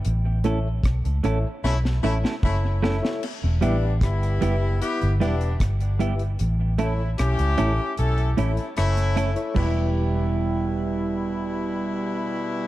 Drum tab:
CC |----------------|x---------------|----------------|x---------------|
HH |x-x-xxx---------|--x-xxx-xxxxxxxx|x-x-xxx-xxxxxxxx|----------------|
SD |----r---oo-o--oo|----r-------r---|----r-------r---|----------------|
T2 |------------o---|----------------|----------------|----------------|
BD |----o-------o---|----o-------o---|----------------|o---------------|